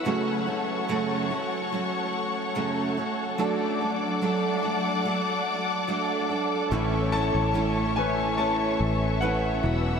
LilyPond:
<<
  \new Staff \with { instrumentName = "String section" } { \time 4/4 \key a \major \tempo 4 = 72 << { <cis'' fis'' cis'''>1 | <fis d'' fis'' d'''>1 | <cis'' e'' cis'''>2.~ <cis'' e'' cis'''>8 <fis'' e'''>8 | } \\ { a'1~ | a'1~ | a'2.~ a'8 b'8 | } >> }
  \new Staff \with { instrumentName = "Grand piano" } { \time 4/4 \key a \major r1 | r1 | r8 <cis'' a''>4 <b' gis''>8 <cis'' a''>4 <b' fis''>4 | }
  \new Staff \with { instrumentName = "Grand piano" } { \time 4/4 \key a \major <fis a cis'>8 r2. r8 | <fis a d'>8 r2. r8 | <e a cis'>4. <e a cis'>8 r4. <e fis b>8 | }
  \new Staff \with { instrumentName = "Steel-string acoustic guitar" } { \time 4/4 \key a \major <fis, cis fis a cis' fis'>8 <fis a cis' fis'>8 <fis, cis fis a cis' fis'>8 <fis a cis' fis'>8 <fis a cis' fis'>4 <fis, cis fis a cis' fis'>8 <fis a cis' fis'>8 | <fis a d' a'>8 <a d' a'>8 <fis a d' a'>8 <a d' a'>8 <fis a d' a'>4 <fis a d' a'>8 <a d' a'>8 | <a, e a cis' e' a'>8 <a cis' e' a'>8 <a, e a cis' e' a'>8 <a cis' e' a'>8 <a cis' e' a'>4 <a, e a cis' e' a'>8 <b e' fis'>8 | }
  \new Staff \with { instrumentName = "Fingered electric bass" } { \clef bass \time 4/4 \key a \major r1 | r1 | a,,8. a,,4.~ a,,16 a,,4 e,,8 | }
>>